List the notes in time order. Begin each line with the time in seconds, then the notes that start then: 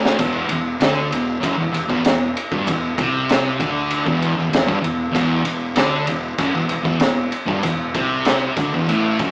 Already playing: D2 D3 A3 D4
0.05 snare
0.18 E1 E2, kick, ride, shaker
0.49 E1 E2, ride, shaker
0.80 D2 D3, snare, ride, shaker
1.11 E1 E2, ride, shaker
1.41 F#1 F#2, kick, ride, shaker
1.58 E1 E2
1.72 E1 E2, ride, shaker
1.89 E1 E2, kick
2.04 E1 E2, snare, ride, shaker
2.37 ride, shaker
2.51 G1 G2, kick
2.67 E1 E2, kick, ride, shaker
2.98 C2 C3, kick, ride, shaker
3.29 snare, ride, shaker
3.60 D2 D3, kick, ride, shaker
3.90 ride, shaker
4.05 E1 E2, kick
4.22 ride, shaker
4.36 E1 E2
4.49 E1 E2, ride
4.54 snare, shaker
4.66 G1 G2, kick
4.81 E1 E2, ride, shaker
5.12 E1 E2, kick, ride
5.16 shaker
5.44 E1 E2, ride, shaker
5.75 D2 D3, snare, ride, shaker
6.07 E1 E2, ride, shaker
6.38 F#1 F#2, kick, ride, shaker
6.54 E1 E2
6.69 E1 E2, ride, shaker
6.83 E1 E2, kick
7.00 E1 E2, snare, ride, shaker
7.32 ride, shaker
7.46 G1 G2, kick
7.63 E1 E2, kick, ride, shaker
7.94 C2 C3, kick, ride, shaker
8.25 snare, ride, shaker
8.57 D2 D3, kick, ride, shaker
8.73 E1 E2
8.88 A1 A2, ride, shaker
9.19 F#1 F#2, kick, ride, shaker